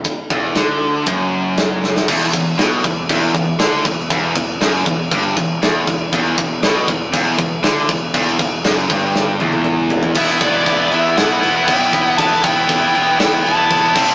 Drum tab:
CC |----------------|x-x-x-x-x-x-x-x-|x-x-x-x-x-x-x-x-|x-x-x-x-x-x-x-x-|
RD |b---b---b---b---|----------------|----------------|----------------|
SD |----o-------o-oo|----o-------o---|----o-------o---|----o-------o---|
T1 |----------------|----------------|----------------|----------------|
T2 |----------------|----------------|----------------|----------------|
FT |----------------|----------------|----------------|----------------|
BD |o-o-----o-------|o-o---o-o-o---o-|o-o---o-o-o---o-|o-o---o-o-o---o-|

CC |x-x-x-x---------|x-x-x-x-x-x-x-x-|x-x-x-x-x-x-x-x-|
RD |----------------|----------------|----------------|
SD |----o---o-------|--------o-------|--------o-------|
T1 |----------oo----|----------------|----------------|
T2 |------------o---|----------------|----------------|
FT |--------------oo|----------------|----------------|
BD |o-o---o---------|o-o-o-------o-o-|o-o-o-------o-o-|